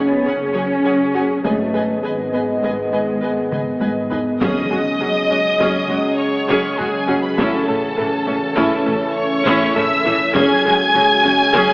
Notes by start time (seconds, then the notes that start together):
Already playing: F#1 F#3 C#4 G#4 C#5
0.10 B3
0.25 F#1 C#4 G#4 C#5 F#5 G#5
0.54 F#3 G#4 C#5 F#5 G#5
0.85 F#1 G#4 C#5 F#5 G#5
1.14 F#4 G#4 C#5 F#5 G#5
1.43 G#1 D#3 G#3 A3 B3 G#4 B4 D#5 G#5, taiko
1.74 G#4 B4 D#5 G#5
2.03 G#1 G#3 G#4 B4 D#5 G#5
2.33 B3 G#4 B4 D#5 G#5
2.63 G#1 G#3 G#4 B4 D#5 G#5, taiko
2.92 B3 G#4 B4 D#5 G#5
3.22 G#1 G#4 B4 D#5 G#5
3.52 G#3 G#4 B4 D#5 G#5, taiko mid
3.80 G#1 G#4 B4 D#5 G#5, taiko high
4.10 D#4 G#4 B4 D#5 G#5, taiko low
4.40 F#1 F#2 C#3 F#3 G#3 C#4 F#4 G#4 C#5 D#5 D#6, taiko, impact
4.71 F#1 F#2 G#3 F#4 G#4
5.01 F#1 F#2 F#3 C#4 G#4
5.30 F#1 F#2 G#3 C#4 F#4
5.59 F#1 F#2 F#3 C#4 G#4, taiko
5.89 F#1 F#2 G#3 C#4 F#4
6.19 C#5 C#6
6.49 F#1 F#2 F#3 C#4 G#4
6.78 F#1 F#2 G#3 F#4 G#4 G#5, taiko low
7.08 F#1 F#2 F#3 C#4 F#4
7.23 B4 B5
7.37 A1 A2 E3 A3 C#4 E4 A4 A5, taiko
7.67 A1 A2 A3 C#4 A4
7.97 A1 A2 E3 A3 A4
8.27 A1 A2 A3 C#4
8.56 A1 A2 A3 C#4 E4, taiko
8.86 A1 A2 A3 C#4
9.16 C#5 C#6
9.46 A1 A2 A3 C#4 E4
9.75 A1 A2 A3 C#4 A4 E5 E6, taiko low
10.05 A1 A2 E3 A3 E4
10.35 F#1 F#2 C#3 F#3 G#3 C#4 F#4 G#4 C#5 G#5 G#6, taiko
10.65 F#1 F#2 G#3 F#4 G#4
10.94 F#1 F#2 F#3 C#4 G#4
11.25 F#1 F#2 G#3 C#4 F#4
11.54 F#1 F#2 F#3 C#4 G#4, taiko